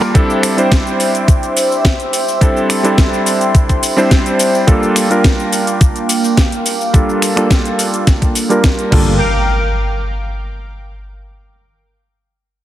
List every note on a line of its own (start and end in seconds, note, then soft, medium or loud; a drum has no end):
0.00 0.11 G3 medium
0.00 0.11 A#3 medium
0.00 0.12 D4 medium
0.00 0.12 F4 medium
0.00 0.12 A#4 loud
0.00 0.11 F5 medium
0.00 0.13 A5 medium
0.00 2.37 D6 medium
0.00 muted clean electric guitar stroke loud
0.00 tambourine soft
0.14 0.54 G3 medium
0.14 0.54 C4 medium
0.14 0.54 D4 medium
0.14 0.55 E4 medium
0.14 0.55 A4 medium
0.14 4.64 C5 medium
0.14 4.64 E5 medium
0.14 8.88 G5 medium
0.14 kick loud
0.14 closed hi-hat medium
0.14 shaker soft
0.30 shaker soft
0.43 finger snap medium
0.43 open hi-hat loud
0.43 shaker medium
0.57 2.37 G3 medium
0.57 2.38 C4 medium
0.57 2.38 D4 medium
0.57 2.38 E4 medium
0.57 2.38 C5 medium
0.57 closed hi-hat soft
0.57 shaker soft
0.72 kick loud
0.72 snare loud
0.72 closed hi-hat medium
0.72 shaker soft
0.87 shaker soft
1.00 open hi-hat medium
1.00 shaker medium
1.15 closed hi-hat soft
1.15 shaker soft
1.28 kick loud
1.28 closed hi-hat medium
1.28 shaker soft
1.43 closed hi-hat soft
1.43 shaker soft
1.57 open hi-hat loud
1.57 shaker medium
1.72 shaker soft
1.85 kick loud
1.85 snare loud
1.85 closed hi-hat medium
1.85 shaker soft
2.00 closed hi-hat soft
2.00 shaker soft
2.13 open hi-hat medium
2.13 shaker medium
2.28 shaker soft
2.41 2.81 G3 medium
2.41 2.81 C4 medium
2.41 2.81 D4 medium
2.41 2.81 E4 medium
2.41 2.81 A4 medium
2.41 4.66 C6 medium
2.41 kick loud
2.41 closed hi-hat medium
2.41 shaker soft
2.57 shaker soft
2.70 finger snap medium
2.70 open hi-hat loud
2.70 shaker medium
2.83 3.94 G3 medium
2.83 3.94 C4 medium
2.83 3.95 D4 medium
2.83 3.95 E4 medium
2.83 3.95 A4 medium
2.83 closed hi-hat medium
2.83 shaker soft
2.98 kick loud
2.98 snare loud
2.98 closed hi-hat medium
2.98 shaker soft
3.13 shaker soft
3.26 open hi-hat medium
3.26 shaker medium
3.41 closed hi-hat medium
3.41 shaker soft
3.55 kick loud
3.55 closed hi-hat medium
3.55 shaker soft
3.69 kick medium
3.69 closed hi-hat soft
3.69 shaker soft
3.83 open hi-hat loud
3.83 shaker medium
3.96 4.64 G3 medium
3.96 4.64 C4 medium
3.96 4.64 D4 medium
3.96 4.65 E4 medium
3.96 4.65 C5 loud
3.96 shaker soft
4.11 kick loud
4.11 snare loud
4.11 closed hi-hat medium
4.11 shaker soft
4.26 closed hi-hat soft
4.26 shaker soft
4.39 open hi-hat medium
4.39 shaker medium
4.55 shaker soft
4.67 5.07 G3 medium
4.67 5.07 A#3 medium
4.67 8.88 A#3 medium
4.67 5.07 D4 medium
4.67 5.07 F4 medium
4.67 5.07 A4 loud
4.67 8.88 F5 medium
4.67 8.88 D6 medium
4.67 kick loud
4.67 closed hi-hat medium
4.67 shaker soft
4.83 shaker soft
4.96 finger snap medium
4.96 open hi-hat loud
4.96 shaker medium
5.10 6.90 G3 medium
5.10 6.90 A#3 medium
5.10 6.91 D4 medium
5.10 6.91 F4 medium
5.10 6.91 A#4 medium
5.10 closed hi-hat medium
5.10 shaker soft
5.24 kick loud
5.24 snare loud
5.24 closed hi-hat medium
5.24 shaker soft
5.39 shaker soft
5.53 open hi-hat medium
5.53 shaker medium
5.67 closed hi-hat medium
5.67 shaker soft
5.81 kick loud
5.81 closed hi-hat medium
5.81 shaker soft
5.96 closed hi-hat soft
5.96 shaker soft
6.09 open hi-hat loud
6.09 shaker medium
6.24 shaker soft
6.37 kick loud
6.37 snare loud
6.37 closed hi-hat medium
6.37 shaker soft
6.52 closed hi-hat soft
6.52 shaker soft
6.66 open hi-hat medium
6.66 shaker medium
6.81 shaker soft
6.93 7.33 G3 medium
6.93 7.33 A#3 medium
6.93 7.33 D4 medium
6.93 7.34 F4 medium
6.93 7.34 A4 medium
6.93 kick loud
6.93 closed hi-hat medium
6.93 shaker soft
7.09 shaker soft
7.22 finger snap medium
7.22 open hi-hat loud
7.22 shaker medium
7.36 8.47 G3 medium
7.36 8.47 A#3 medium
7.36 8.47 D4 medium
7.36 8.48 F4 medium
7.36 8.48 A4 medium
7.36 finger snap medium
7.36 closed hi-hat medium
7.36 shaker soft
7.51 kick loud
7.51 snare loud
7.51 closed hi-hat medium
7.51 shaker soft
7.65 closed hi-hat soft
7.65 shaker soft
7.79 open hi-hat medium
7.79 shaker medium
7.94 closed hi-hat medium
7.94 shaker soft
8.07 kick loud
8.07 snare medium
8.07 closed hi-hat medium
8.07 shaker soft
8.22 kick medium
8.22 closed hi-hat soft
8.22 shaker soft
8.35 open hi-hat loud
8.35 shaker medium
8.49 8.89 G3 medium
8.49 8.90 A#3 medium
8.49 8.91 D4 medium
8.49 8.91 F4 medium
8.49 8.93 A#4 medium
8.49 closed hi-hat soft
8.49 shaker soft
8.64 kick loud
8.64 snare loud
8.64 closed hi-hat medium
8.64 shaker soft
8.79 closed hi-hat soft
8.79 shaker soft
8.91 9.19 G1 medium
8.91 9.13 G3 medium
8.91 9.13 A#3 medium
8.91 9.13 D4 medium
8.91 9.14 F4 medium
8.91 9.14 A4 medium
8.91 9.19 A#4 medium
8.91 9.19 F5 medium
8.91 9.19 G5 medium
8.91 9.19 D6 medium
8.91 kick loud
8.91 crash medium
8.91 impact medium